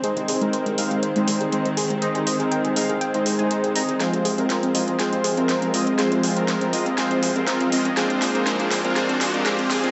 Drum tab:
HH |xxoxxxoxxxoxxxox|xxoxxxoxxxoxxxox|xxoxxxoxxxoxxxox|xxoxxxoxxxoxxxox|
SD |----------------|----------------|o---o---o---o---|o---o---o---o---|

HH |xxoxxxoxxxoxxxox|
SD |o-o-o-o-o-o-o-o-|